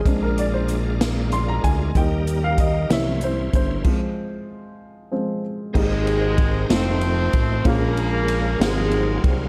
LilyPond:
<<
  \new Staff \with { instrumentName = "Grand piano" } { \time 6/8 \key aes \major \tempo 4. = 63 aes'16 bes'16 d''16 c''8 r8. c'''16 bes''16 aes''8 | g''8. f''16 ees''8 e''8 c''8 c''8~ | c''2 r4 | <bes c' ees' g' aes'>4. <a c' ees' f' a'>4. |
<bes des' f' aes' bes'>4. <c' f' ges' aes' bes'>4. | }
  \new Staff \with { instrumentName = "Grand piano" } { \clef bass \time 6/8 \key aes \major <aes c' d'>8 r2 r8 | <g bes ees'>4. <e bes des'>8 r4 | <f aes c'>2 <f aes c'>8 r8 | aes,4. r4. |
bes,4. aes,4. | }
  \new Staff \with { instrumentName = "Tonewheel organ" } { \time 6/8 \key aes \major <aes d' f' bes'>2. | <g bes ees' a' bes'>4. <bes des' e' ces'' c''>4. | r2. | <aes c' ees' bes' g''>4. <a c' ees' f' c''>4. |
<aes bes des' f' bes'>4. <ges bes c' aes' f''>4. | }
  \new Staff \with { instrumentName = "Horn section" } { \clef bass \time 6/8 \key aes \major << { r2. | r2. | r2. | aes4. c'4. |
bes4. aes4 r8 | } \\ { r2. | r2. | r2. | <c ees>4. <ees a>4. |
<des f>4. <c ees>4. | } >> }
  \new Staff \with { instrumentName = "Analog synth bass" } { \clef bass \time 6/8 \key aes \major bes,,2~ bes,,8 d,8 | ees,4. c,4 g,,8 | r2. | aes,,4. f,,4 a,,8 |
bes,,4. aes,,4 c,8 | }
  \new DrumStaff \with { instrumentName = "Drums" } \drummode { \time 6/8 <hh bd>8 hh8 hh8 <hh sn>8 hh8 <hh bd>8 | <hh bd>8 hh8 <hh bd>8 <hh sn>8 hh8 <hh bd>8 | <cymc bd>4. r4. | <cymc bd>8 cymr8 <bd cymr>8 <cymr sn>8 cymr8 <bd cymr>8 |
<bd cymr>8 cymr8 cymr8 <cymr sn>8 cymr8 <bd cymr>8 | }
>>